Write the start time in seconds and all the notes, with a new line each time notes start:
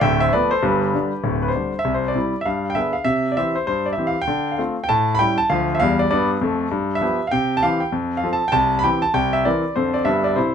0.01 D1 D2 E5 G5
0.20 C5 E5
0.33 F3 A3 B3 B4 D5
0.51 A4 C5
0.62 G1 G2 G4 B4
0.94 D3 G3 D4
1.24 D1 D2
1.42 B4
1.48 C5
1.55 D3 G3 D4
1.79 E5
1.85 C2
1.94 C5
2.08 D5
2.15 C3 G3 E4
2.41 E5
2.45 G2 F5
2.70 G5
2.75 D3 B3 G#4 E5
2.93 F5
3.04 C3 E5
3.32 D5
3.37 E3 C4 G4 E5
3.55 C5
3.67 G2 C5
3.86 D5
3.93 E5
3.98 E3 C4 G4
4.07 F5
4.22 G5
4.28 D3
4.52 F5
4.58 A3 C4 F4
4.84 G5
4.89 A2 A5
5.15 B5
5.19 G3 C#4 E4 G5
5.38 A5
5.50 D2 F3 F5
5.75 E5
5.80 E2 G3 F5
5.99 D5
6.11 G2 B3 D5
6.41 F2 A3
6.71 G2
6.95 E5
7.01 F3 B3 G4
7.27 F5
7.31 C3 G5
7.57 A5
7.63 E3 C4 G4 F5
7.80 G5
7.92 F2
8.17 F5
8.24 F3 C4 A4
8.33 A5
8.48 G5
8.52 C2 A5
8.79 B5
8.84 E3 C4 G4 G5
9.02 A5
9.14 C2 G5
9.33 E5
9.45 E3 C4 A#4 D5
9.76 F2 D3 C4 A4 C5
9.94 D5
10.05 G2 D3 B3 G4 E5
10.24 D5
10.36 C3 E4 C5